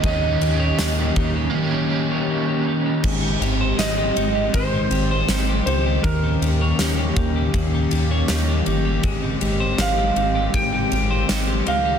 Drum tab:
CC |--------|x-------|--------|--------|
RD |xxxx----|-xxxxxxx|xxxxxxxx|xxxxxxxx|
TB |--x-----|--x---x-|--x---x-|--x---x-|
SD |--o-----|--o---o-|--o---o-|--o---o-|
BD |o--o----|o---o---|o--oo---|o---o---|